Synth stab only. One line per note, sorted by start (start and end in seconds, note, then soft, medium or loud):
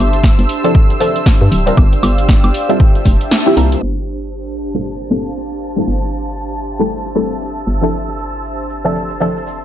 0.00 0.60 F3 medium
0.00 0.61 C4 medium
0.00 0.61 D4 medium
0.00 0.61 E4 medium
0.00 0.61 A4 medium
0.64 0.89 F3 medium
0.64 0.89 C4 medium
0.64 0.89 D4 medium
0.64 0.90 E4 medium
0.64 0.90 A4 loud
1.00 1.18 F3 medium
1.00 1.18 C4 medium
1.00 1.18 D4 medium
1.00 1.18 E4 medium
1.00 1.18 A4 medium
1.66 2.65 G3 medium
1.66 2.66 C4 medium
1.66 2.66 D4 medium
1.66 2.66 F4 medium
1.66 2.66 A#4 medium
2.69 2.94 G3 medium
2.69 2.94 C4 medium
2.69 2.95 E4 medium
2.69 2.95 F4 medium
2.69 2.95 A4 medium
3.46 3.54 G3 medium
3.46 3.54 C4 medium
3.46 3.54 E4 medium
3.46 3.55 F4 medium
3.46 3.55 G4 loud
3.56 4.08 G3 medium
3.56 4.08 A#3 medium
3.56 4.08 C4 medium
3.56 4.08 F4 medium
3.56 4.08 A#4 medium
4.74 4.99 G3 medium
4.74 5.00 A#3 medium
4.74 5.00 C4 medium
4.74 5.00 F4 medium
4.74 5.00 A4 loud
5.10 5.28 G3 medium
5.10 5.28 A#3 medium
5.10 5.28 C4 medium
5.10 5.28 F4 medium
5.10 5.29 A4 medium
5.76 6.76 G3 medium
5.76 6.76 A3 medium
5.76 6.76 C4 medium
5.76 6.76 E4 medium
5.76 6.77 A4 medium
6.79 7.05 G3 medium
6.79 7.05 A3 medium
6.79 7.05 C4 medium
6.79 7.05 E4 medium
6.79 7.05 A4 loud
7.15 7.33 G3 medium
7.15 7.33 A3 medium
7.15 7.33 C4 medium
7.15 7.34 E4 medium
7.15 7.34 A4 medium
7.81 8.81 F3 medium
7.81 8.81 C4 medium
7.81 8.81 D4 medium
7.81 8.82 E4 medium
7.81 8.82 A4 medium
8.84 9.10 F3 medium
8.84 9.10 C4 medium
8.84 9.10 D4 medium
8.84 9.10 E4 medium
8.84 9.10 A4 loud
9.20 9.38 F3 medium
9.20 9.38 C4 medium
9.20 9.39 D4 medium
9.20 9.39 E4 medium
9.20 9.39 A4 medium